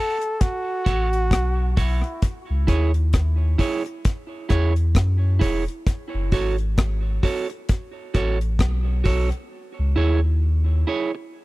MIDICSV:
0, 0, Header, 1, 6, 480
1, 0, Start_track
1, 0, Tempo, 910470
1, 1171, Time_signature, 4, 2, 24, 8
1, 6035, End_track
2, 0, Start_track
2, 0, Title_t, "Clean electric guitar"
2, 0, Program_c, 0, 27
2, 0, Note_on_c, 0, 66, 83
2, 0, Note_on_c, 0, 69, 96
2, 0, Note_on_c, 0, 73, 91
2, 88, Note_off_c, 0, 66, 0
2, 91, Note_off_c, 0, 69, 0
2, 93, Note_off_c, 0, 73, 0
2, 446, Note_on_c, 0, 66, 99
2, 454, Note_on_c, 0, 69, 91
2, 457, Note_on_c, 0, 73, 99
2, 568, Note_off_c, 0, 66, 0
2, 571, Note_off_c, 0, 69, 0
2, 573, Note_off_c, 0, 73, 0
2, 932, Note_on_c, 0, 66, 79
2, 936, Note_on_c, 0, 69, 86
2, 940, Note_on_c, 0, 73, 88
2, 1051, Note_off_c, 0, 66, 0
2, 1052, Note_off_c, 0, 69, 0
2, 1055, Note_off_c, 0, 73, 0
2, 1409, Note_on_c, 0, 64, 84
2, 1414, Note_on_c, 0, 68, 89
2, 1418, Note_on_c, 0, 73, 88
2, 1529, Note_off_c, 0, 64, 0
2, 1532, Note_off_c, 0, 68, 0
2, 1534, Note_off_c, 0, 73, 0
2, 1889, Note_on_c, 0, 64, 93
2, 1896, Note_on_c, 0, 68, 82
2, 1899, Note_on_c, 0, 73, 110
2, 2010, Note_off_c, 0, 64, 0
2, 2013, Note_off_c, 0, 68, 0
2, 2014, Note_off_c, 0, 73, 0
2, 2367, Note_on_c, 0, 64, 93
2, 2370, Note_on_c, 0, 68, 94
2, 2376, Note_on_c, 0, 73, 103
2, 2489, Note_off_c, 0, 64, 0
2, 2490, Note_off_c, 0, 68, 0
2, 2493, Note_off_c, 0, 73, 0
2, 2844, Note_on_c, 0, 64, 76
2, 2850, Note_on_c, 0, 68, 83
2, 2853, Note_on_c, 0, 73, 76
2, 2967, Note_off_c, 0, 64, 0
2, 2970, Note_off_c, 0, 68, 0
2, 2972, Note_off_c, 0, 73, 0
2, 3333, Note_on_c, 0, 66, 90
2, 3338, Note_on_c, 0, 69, 88
2, 3341, Note_on_c, 0, 73, 91
2, 3452, Note_off_c, 0, 66, 0
2, 3454, Note_off_c, 0, 69, 0
2, 3456, Note_off_c, 0, 73, 0
2, 3812, Note_on_c, 0, 66, 84
2, 3819, Note_on_c, 0, 69, 100
2, 3821, Note_on_c, 0, 73, 98
2, 3931, Note_off_c, 0, 66, 0
2, 3935, Note_off_c, 0, 69, 0
2, 3936, Note_off_c, 0, 73, 0
2, 4292, Note_on_c, 0, 66, 85
2, 4298, Note_on_c, 0, 69, 102
2, 4302, Note_on_c, 0, 73, 96
2, 4411, Note_off_c, 0, 66, 0
2, 4414, Note_off_c, 0, 69, 0
2, 4417, Note_off_c, 0, 73, 0
2, 4766, Note_on_c, 0, 66, 76
2, 4773, Note_on_c, 0, 69, 89
2, 4775, Note_on_c, 0, 73, 89
2, 4888, Note_off_c, 0, 66, 0
2, 4892, Note_off_c, 0, 69, 0
2, 4893, Note_off_c, 0, 73, 0
2, 5250, Note_on_c, 0, 64, 92
2, 5255, Note_on_c, 0, 68, 98
2, 5258, Note_on_c, 0, 73, 90
2, 5370, Note_off_c, 0, 64, 0
2, 5373, Note_off_c, 0, 68, 0
2, 5375, Note_off_c, 0, 73, 0
2, 5731, Note_on_c, 0, 64, 80
2, 5736, Note_on_c, 0, 68, 87
2, 5740, Note_on_c, 0, 73, 103
2, 5851, Note_off_c, 0, 64, 0
2, 5854, Note_off_c, 0, 68, 0
2, 5856, Note_off_c, 0, 73, 0
2, 6035, End_track
3, 0, Start_track
3, 0, Title_t, "Flugelhorn"
3, 0, Program_c, 1, 56
3, 0, Note_on_c, 1, 69, 120
3, 216, Note_on_c, 1, 66, 109
3, 224, Note_off_c, 1, 69, 0
3, 903, Note_off_c, 1, 66, 0
3, 910, Note_on_c, 1, 66, 52
3, 946, Note_on_c, 1, 64, 86
3, 954, Note_off_c, 1, 66, 0
3, 1179, Note_off_c, 1, 64, 0
3, 6035, End_track
4, 0, Start_track
4, 0, Title_t, "Sub bass"
4, 0, Program_c, 2, 38
4, 458, Note_on_c, 2, 33, 84
4, 685, Note_off_c, 2, 33, 0
4, 697, Note_on_c, 2, 35, 92
4, 924, Note_off_c, 2, 35, 0
4, 939, Note_on_c, 2, 35, 111
4, 1069, Note_off_c, 2, 35, 0
4, 1319, Note_on_c, 2, 37, 95
4, 1412, Note_off_c, 2, 37, 0
4, 1417, Note_on_c, 2, 39, 91
4, 1875, Note_off_c, 2, 39, 0
4, 2378, Note_on_c, 2, 40, 90
4, 2606, Note_off_c, 2, 40, 0
4, 2615, Note_on_c, 2, 42, 98
4, 2844, Note_off_c, 2, 42, 0
4, 2857, Note_on_c, 2, 28, 95
4, 2989, Note_off_c, 2, 28, 0
4, 3239, Note_on_c, 2, 30, 106
4, 3332, Note_off_c, 2, 30, 0
4, 3336, Note_on_c, 2, 32, 89
4, 3795, Note_off_c, 2, 32, 0
4, 4299, Note_on_c, 2, 33, 82
4, 4526, Note_off_c, 2, 33, 0
4, 4532, Note_on_c, 2, 35, 88
4, 4763, Note_off_c, 2, 35, 0
4, 4778, Note_on_c, 2, 35, 95
4, 4910, Note_off_c, 2, 35, 0
4, 5162, Note_on_c, 2, 37, 98
4, 5254, Note_off_c, 2, 37, 0
4, 5259, Note_on_c, 2, 39, 90
4, 5717, Note_off_c, 2, 39, 0
4, 6035, End_track
5, 0, Start_track
5, 0, Title_t, "Muted clean electric guitar strokes"
5, 114, Note_on_c, 9, 29, 35
5, 167, Note_off_c, 9, 29, 0
5, 2028, Note_on_c, 9, 29, 45
5, 2081, Note_off_c, 9, 29, 0
5, 3952, Note_on_c, 9, 29, 43
5, 4005, Note_off_c, 9, 29, 0
5, 5876, Note_on_c, 9, 29, 45
5, 5929, Note_off_c, 9, 29, 0
5, 6035, End_track
6, 0, Start_track
6, 0, Title_t, "Drums"
6, 113, Note_on_c, 9, 42, 51
6, 166, Note_off_c, 9, 42, 0
6, 215, Note_on_c, 9, 42, 94
6, 216, Note_on_c, 9, 36, 120
6, 268, Note_off_c, 9, 42, 0
6, 269, Note_off_c, 9, 36, 0
6, 455, Note_on_c, 9, 36, 93
6, 456, Note_on_c, 9, 42, 72
6, 508, Note_off_c, 9, 36, 0
6, 508, Note_off_c, 9, 42, 0
6, 596, Note_on_c, 9, 42, 59
6, 649, Note_off_c, 9, 42, 0
6, 691, Note_on_c, 9, 36, 109
6, 697, Note_on_c, 9, 42, 95
6, 701, Note_on_c, 9, 37, 120
6, 744, Note_off_c, 9, 36, 0
6, 749, Note_off_c, 9, 42, 0
6, 754, Note_off_c, 9, 37, 0
6, 933, Note_on_c, 9, 46, 70
6, 935, Note_on_c, 9, 36, 99
6, 986, Note_off_c, 9, 46, 0
6, 987, Note_off_c, 9, 36, 0
6, 1074, Note_on_c, 9, 42, 54
6, 1127, Note_off_c, 9, 42, 0
6, 1171, Note_on_c, 9, 42, 89
6, 1173, Note_on_c, 9, 36, 103
6, 1224, Note_off_c, 9, 42, 0
6, 1226, Note_off_c, 9, 36, 0
6, 1414, Note_on_c, 9, 36, 92
6, 1414, Note_on_c, 9, 42, 80
6, 1467, Note_off_c, 9, 36, 0
6, 1467, Note_off_c, 9, 42, 0
6, 1551, Note_on_c, 9, 42, 56
6, 1604, Note_off_c, 9, 42, 0
6, 1650, Note_on_c, 9, 42, 95
6, 1654, Note_on_c, 9, 36, 101
6, 1655, Note_on_c, 9, 37, 105
6, 1702, Note_off_c, 9, 42, 0
6, 1707, Note_off_c, 9, 36, 0
6, 1708, Note_off_c, 9, 37, 0
6, 1893, Note_on_c, 9, 36, 82
6, 1894, Note_on_c, 9, 46, 77
6, 1946, Note_off_c, 9, 36, 0
6, 1947, Note_off_c, 9, 46, 0
6, 2034, Note_on_c, 9, 42, 50
6, 2086, Note_off_c, 9, 42, 0
6, 2134, Note_on_c, 9, 42, 95
6, 2136, Note_on_c, 9, 36, 109
6, 2186, Note_off_c, 9, 42, 0
6, 2189, Note_off_c, 9, 36, 0
6, 2370, Note_on_c, 9, 42, 76
6, 2374, Note_on_c, 9, 36, 91
6, 2376, Note_on_c, 9, 37, 56
6, 2423, Note_off_c, 9, 42, 0
6, 2427, Note_off_c, 9, 36, 0
6, 2429, Note_off_c, 9, 37, 0
6, 2511, Note_on_c, 9, 42, 57
6, 2563, Note_off_c, 9, 42, 0
6, 2609, Note_on_c, 9, 36, 113
6, 2612, Note_on_c, 9, 42, 91
6, 2617, Note_on_c, 9, 37, 111
6, 2662, Note_off_c, 9, 36, 0
6, 2665, Note_off_c, 9, 42, 0
6, 2670, Note_off_c, 9, 37, 0
6, 2852, Note_on_c, 9, 46, 71
6, 2854, Note_on_c, 9, 36, 83
6, 2905, Note_off_c, 9, 46, 0
6, 2907, Note_off_c, 9, 36, 0
6, 2996, Note_on_c, 9, 42, 53
6, 3049, Note_off_c, 9, 42, 0
6, 3092, Note_on_c, 9, 36, 106
6, 3094, Note_on_c, 9, 42, 91
6, 3145, Note_off_c, 9, 36, 0
6, 3146, Note_off_c, 9, 42, 0
6, 3330, Note_on_c, 9, 46, 51
6, 3333, Note_on_c, 9, 36, 91
6, 3383, Note_off_c, 9, 46, 0
6, 3386, Note_off_c, 9, 36, 0
6, 3471, Note_on_c, 9, 42, 51
6, 3524, Note_off_c, 9, 42, 0
6, 3572, Note_on_c, 9, 42, 85
6, 3574, Note_on_c, 9, 36, 101
6, 3578, Note_on_c, 9, 37, 109
6, 3625, Note_off_c, 9, 42, 0
6, 3627, Note_off_c, 9, 36, 0
6, 3630, Note_off_c, 9, 37, 0
6, 3813, Note_on_c, 9, 36, 87
6, 3814, Note_on_c, 9, 46, 74
6, 3865, Note_off_c, 9, 36, 0
6, 3866, Note_off_c, 9, 46, 0
6, 3954, Note_on_c, 9, 42, 51
6, 4007, Note_off_c, 9, 42, 0
6, 4052, Note_on_c, 9, 42, 94
6, 4056, Note_on_c, 9, 36, 116
6, 4105, Note_off_c, 9, 42, 0
6, 4109, Note_off_c, 9, 36, 0
6, 4294, Note_on_c, 9, 42, 72
6, 4295, Note_on_c, 9, 36, 92
6, 4347, Note_off_c, 9, 42, 0
6, 4348, Note_off_c, 9, 36, 0
6, 4435, Note_on_c, 9, 42, 57
6, 4487, Note_off_c, 9, 42, 0
6, 4529, Note_on_c, 9, 36, 107
6, 4532, Note_on_c, 9, 42, 93
6, 4537, Note_on_c, 9, 37, 109
6, 4582, Note_off_c, 9, 36, 0
6, 4585, Note_off_c, 9, 42, 0
6, 4589, Note_off_c, 9, 37, 0
6, 4770, Note_on_c, 9, 46, 74
6, 4774, Note_on_c, 9, 36, 84
6, 4823, Note_off_c, 9, 46, 0
6, 4827, Note_off_c, 9, 36, 0
6, 4913, Note_on_c, 9, 42, 50
6, 4966, Note_off_c, 9, 42, 0
6, 6035, End_track
0, 0, End_of_file